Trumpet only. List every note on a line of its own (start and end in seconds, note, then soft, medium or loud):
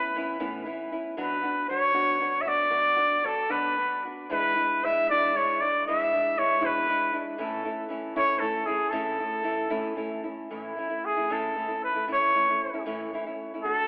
0.00 0.90 B4 loud
1.17 1.65 B4 medium
1.69 2.43 C#5 loud
2.41 2.50 E5 medium
2.48 3.27 D5 loud
3.26 3.52 A4 medium
3.51 4.09 B4 loud
4.31 4.86 B4 loud
4.85 5.08 E5 loud
5.10 5.38 D5 loud
5.36 5.62 C#5 loud
5.60 5.85 D5 loud
5.87 6.40 E5 loud
6.38 6.67 C#5 loud
6.66 7.22 B4 loud
7.43 7.89 A4 medium
8.16 8.41 C#5 loud
8.40 8.67 A4 loud
8.66 8.92 G#4 loud
8.90 10.23 A4 medium
10.54 11.07 E4 medium
11.05 11.34 G#4 loud
11.32 11.83 A4 medium
11.84 12.07 B4 loud
12.12 12.84 C#5 loud
13.63 13.88 A4 loud